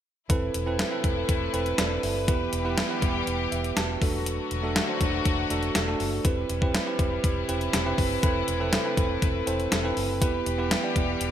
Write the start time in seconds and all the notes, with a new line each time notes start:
0.29 E1 C3 A3 C4 E4 A4 B4, kick, closed hi-hat
0.54 E1, closed hi-hat
0.66 C4 E4 A4 B4
0.79 snare, closed hi-hat
0.91 C4 E4 A4 B4
1.04 E1, kick, closed hi-hat
1.29 E1, kick, closed hi-hat
1.53 E1 C4 E4 A4 B4, closed hi-hat
1.66 closed hi-hat
1.78 E1 A4 D5, snare, closed hi-hat
2.03 F#1 B4 E5, open hi-hat
2.27 E1 E3 G3 B3 E4 G4 B4, kick, closed hi-hat
2.53 E1, closed hi-hat
2.65 B3 E4 G4 B4
2.77 snare, closed hi-hat
2.89 B3 E4 G4 B4
3.02 E1, kick, closed hi-hat
3.27 E1, closed hi-hat
3.52 E1 B4 E5, closed hi-hat
3.64 closed hi-hat
3.77 E1 F#4 B4 A5, snare, closed hi-hat
4.01 E1 D3 F#3 A3 D4 F#4 A4, kick, open hi-hat
4.26 closed hi-hat
4.51 E1, closed hi-hat
4.63 A3 D4 F#4 A4
4.76 snare, closed hi-hat
4.88 A3 D4 F#4 C5
5.01 E1, kick, closed hi-hat
5.25 E1, kick, closed hi-hat
5.50 E1 A3 D4 F#4 A4, closed hi-hat
5.63 closed hi-hat
5.75 E1, snare, closed hi-hat
5.87 A3 D4 F#4 A4
6.00 F#1, open hi-hat
6.24 E1 C3 G3 C4 E4 G4 B4, kick, closed hi-hat
6.50 E1, closed hi-hat
6.61 C4 E4 G4 B4, kick
6.74 snare, closed hi-hat
6.86 C4 E4 G4 B4
6.99 E1, kick, closed hi-hat
7.24 E1, kick, closed hi-hat
7.48 E1 C4 E4 G4 B4, closed hi-hat
7.61 closed hi-hat
7.73 E1, snare, closed hi-hat
7.85 C4 E4 G4 B4
7.98 F#1, kick, open hi-hat
8.22 E1 A3 C4 E4 A4 B4, kick, closed hi-hat
8.48 E1, closed hi-hat
8.60 C4 E4 A4 B4
8.73 snare, closed hi-hat
8.84 C4 E4 A4 B4
8.97 E1, kick, closed hi-hat
9.22 E1, kick, closed hi-hat
9.46 E1 C4 E4 A4 C5, closed hi-hat
9.60 closed hi-hat
9.72 E1, snare, closed hi-hat
9.84 C4 E4 A4 B4
9.97 F#1, open hi-hat
10.21 E1 E3 G3 B3 E4 G4 B4, kick, closed hi-hat
10.46 E1, closed hi-hat
10.58 B3 E4 G4 B4
10.71 snare, closed hi-hat
10.83 B3 E4 G4 D5
10.96 E1, kick, closed hi-hat
11.21 E1, closed hi-hat